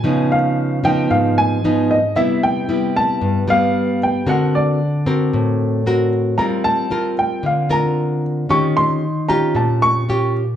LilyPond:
<<
  \new Staff \with { instrumentName = "Grand piano" } { \time 4/4 \key c \mixolydian \tempo 4 = 114 gis''8 eis''4 g''8 eis''8 gis''4 dis''8 | e''8 g''4 a''4 f''4 g''8 | fis''8 d''2. r8 | bes''8 a''4 g''8 f''8 bes''4 r8 |
des'''8 c'''4 bes''8 a''8 des'''4 r8 | }
  \new Staff \with { instrumentName = "Nylon-string guitar" } { \time 4/4 \key c \mixolydian << { <eis b dis'>4. <eis b dis'>4. <eis b dis'>8 r8 | <g b e'>4 <g b e'>4. <g b>4. | <c' fis' bes'>4 r8 <c' fis' bes'>4. <c' fis' bes'>4 | <c' f' bes'>4 <c' f' bes'>4. <c' f' bes'>4. |
<des' f' g'>4 r8 <des' f' g'>4. <des' f' g'>8 r8 | } \\ { cis2 gis,2 | c2 g,2 | d2 a,2 | g2 d2 |
ees2 bes,2 | } >> }
>>